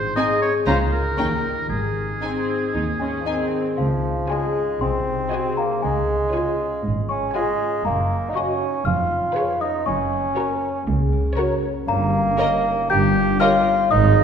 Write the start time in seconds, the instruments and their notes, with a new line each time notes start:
Already playing: harp G#2 G#3 C4 G#4, oboe C5
0.16 viola section C4, violin section D#4 G#5, harp G#4, oboe D#5
0.41 harp D#4, oboe C#5
0.67 cello section C#2, double bass section C#2, harp C#3, viola section C#4, violin section F4 A#5, oboe C5
0.92 harp F4 A#4, oboe A#4
1.17 cello section D#2, double bass section D#2, harp D#3, viola section C#4, violin section D#4 G5
1.43 harp D#4 G4
1.69 double bass section G#1, cello section G#2, harp G#2, oboe G#4
1.96 harp C4
2.22 viola section C4, violin section D#4 G#5, harp G#4
2.48 harp D#4
2.74 cello section D#2, double bass section D#2, harp D#3, viola section D#4
3.00 bassoon G#3, harp C4, viola section C#4, celesta G#5
3.20 bassoon F3
3.26 bassoon D#3, viola section C4, violin section D#4 G#5, harp G#4, celesta D#5
3.52 harp D#4
3.78 double bass section C#2, harp C#3, cello section C#3, bassoon F3, celesta F5
4.04 harp C#4
4.30 bassoon G#3, viola section F4, french horn section F4 G#4, harp G#4, violin section C#5 G#5, celesta G#5
4.56 harp F4
4.81 double bass section C2, harp C3, cello section C3, bassoon C4, celesta C6
5.07 harp D#4
5.32 french horn section F#4 G#4, viola section F#4, harp G#4, violin section D#5 G#5
5.57 bassoon A#3, harp F#4, celesta A#5
5.82 double bass section C#2, cello section C#3, harp C#3, bassoon G#3, celesta G#5
6.09 harp C#4
6.33 viola section F4, french horn section F4 G#4, violin section C#5 G#5, harp C#5
6.59 harp F4
6.83 double bass section G#1, cello section G#2, harp G#3
7.09 harp C#4, bassoon C#4, celesta C#6
7.34 bassoon G#3, viola section F4, french horn section F4 G#4, violin section C#5 G#5, harp C#5, celesta G#5
7.60 harp F4
7.85 double bass section F#1, cello section F#2, harp F#2, bassoon A#3, celesta A#5
8.10 harp C#4
8.29 bassoon D#4
8.35 bassoon C#4, viola section F#4, french horn section F#4 D#5, violin section C#5 D#5, harp C#5, celesta C#6
8.61 harp D#4
8.85 double bass section F1, harp F2, cello section F2, bassoon F4, celesta F6
9.11 harp B3
9.35 viola section G#4, violin section B4 C#5, french horn section B4 C#5, harp C#5
9.61 harp C#4, bassoon D#4, celesta D#6
9.86 double bass section F#1, cello section F#2, harp F#2, bassoon C#4, celesta C#6
10.12 harp A#3
10.37 viola section F#4, violin section A#4 C#5, french horn section A#4 C#5, harp C#5
10.62 harp C#4
10.87 cello section C#2, double bass section C#2, harp C#3
11.12 harp A#3
11.37 viola section F#4, french horn section A#4 C#5, violin section A#4 C#5, harp C#5
11.63 harp C#4
11.88 double bass section G1, harp G2, cello section G2, bassoon A#3, celesta A#5
12.13 harp A#3
12.38 viola section A#4, french horn section A#4 C#5, violin section C#5 D#5, harp C#5
12.64 harp D#4
12.90 double bass section G1, harp G2, cello section G2, bassoon G4, celesta G6
13.15 harp A#3
13.40 bassoon F4, viola section A#4, french horn section A#4 C#5, harp C#5, violin section C#5 D#5, celesta F6
13.66 harp D#4
13.91 double bass section G#1, harp G#2, cello section G#2, bassoon D#4, celesta D#6
14.16 harp G#3